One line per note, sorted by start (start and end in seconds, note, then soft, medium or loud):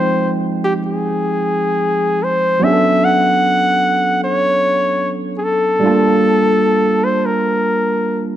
0.00 2.57 F3 medium
0.00 2.57 G#3 soft
0.00 2.59 C4 soft
0.00 2.59 D#4 medium
0.00 0.33 C5 medium
0.00 2.60 G5 medium
0.64 0.73 G4 medium
0.86 2.26 G#4 medium
2.24 2.65 C5 medium
2.60 5.77 F#3 medium
2.60 5.77 B3 medium
2.60 5.78 C#4 medium
2.60 3.06 E5 loud
2.65 5.79 D4 medium
2.65 2.71 G#4 medium
2.73 5.83 A4 medium
3.04 4.23 F#5 loud
4.24 5.13 C#5 loud
5.37 5.45 G#4 medium
5.44 7.05 A4 loud
5.80 8.37 G3 medium
5.80 5.89 A3 soft
5.80 8.37 D4 medium
5.85 8.37 A#3 medium
5.85 8.37 F4 medium
5.85 8.37 A5 medium
7.04 7.27 C5 medium
7.25 8.23 A#4 medium